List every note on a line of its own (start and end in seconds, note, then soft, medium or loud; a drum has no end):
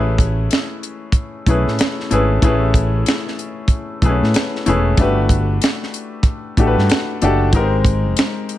0.00 0.47 A1 loud
0.00 0.86 A3 medium
0.00 0.87 C#4 medium
0.00 0.87 E4 medium
0.00 0.87 G#4 medium
0.00 0.88 B4 medium
0.18 kick loud
0.18 closed hi-hat medium
0.51 finger snap medium
0.51 snare medium
0.51 closed hi-hat medium
0.83 closed hi-hat medium
1.12 kick medium
1.12 closed hi-hat medium
1.47 1.64 B1 medium
1.47 1.99 A3 medium
1.47 1.99 C#4 medium
1.47 1.99 E4 medium
1.47 2.00 G#4 medium
1.47 2.00 B4 medium
1.47 kick medium
1.47 closed hi-hat medium
1.67 1.78 A2 medium
1.67 snare soft
1.79 finger snap medium
1.79 snare loud
1.79 closed hi-hat medium
2.00 snare soft
2.11 2.40 G#1 medium
2.11 2.36 A3 medium
2.11 2.37 C#4 medium
2.11 2.37 E4 medium
2.11 2.37 G#4 medium
2.11 2.38 B4 medium
2.11 closed hi-hat medium
2.42 3.02 A1 medium
2.42 3.42 A3 medium
2.42 3.42 C#4 medium
2.42 3.42 E4 medium
2.42 3.43 G#4 medium
2.42 3.43 B4 medium
2.42 kick medium
2.42 closed hi-hat medium
2.74 kick medium
2.74 closed hi-hat medium
3.06 finger snap medium
3.06 snare loud
3.06 closed hi-hat medium
3.28 snare soft
3.39 closed hi-hat medium
3.68 kick medium
3.68 closed hi-hat medium
4.02 4.19 B1 medium
4.02 4.54 A3 medium
4.02 4.10 B3 soft
4.02 4.55 E4 medium
4.02 4.55 G#4 medium
4.02 4.56 B4 medium
4.02 kick medium
4.02 closed hi-hat medium
4.09 4.58 C#4 medium
4.22 4.33 A2 medium
4.22 snare soft
4.34 finger snap medium
4.34 snare loud
4.34 closed hi-hat medium
4.56 snare soft
4.66 4.95 E1 medium
4.66 4.92 A3 medium
4.66 4.92 C#4 medium
4.66 4.93 E4 medium
4.66 4.93 G#4 medium
4.66 4.93 B4 medium
4.66 closed hi-hat medium
4.97 5.58 G1 medium
4.97 5.97 A3 medium
4.97 5.98 D4 medium
4.97 5.98 F#4 medium
4.97 5.98 G4 medium
4.97 5.99 B4 medium
4.97 kick loud
4.97 closed hi-hat medium
5.29 kick medium
5.29 closed hi-hat medium
5.62 finger snap medium
5.62 snare loud
5.62 closed hi-hat medium
5.83 snare soft
5.94 closed hi-hat medium
6.23 kick medium
6.23 closed hi-hat medium
6.57 6.75 A1 medium
6.57 7.09 A3 medium
6.57 7.10 D4 medium
6.57 7.10 F#4 medium
6.57 7.11 G4 medium
6.57 6.67 A4 medium
6.57 kick medium
6.57 closed hi-hat medium
6.67 7.14 B4 medium
6.77 6.88 G2 medium
6.77 snare soft
6.90 finger snap medium
6.90 snare loud
6.90 closed hi-hat medium
7.22 7.53 F#1 medium
7.22 7.47 A3 medium
7.22 7.48 D4 medium
7.22 7.48 F#4 medium
7.22 7.48 G4 medium
7.22 7.49 A4 medium
7.22 closed hi-hat medium
7.53 8.13 G#1 loud
7.53 8.52 G#3 medium
7.53 7.61 B3 medium
7.53 8.53 D#4 medium
7.53 8.53 G4 medium
7.53 8.54 A#4 medium
7.53 kick loud
7.53 closed hi-hat medium
7.60 8.56 C4 medium
7.85 kick loud
7.85 closed hi-hat medium
8.17 finger snap medium
8.17 snare loud
8.17 closed hi-hat loud
8.49 closed hi-hat medium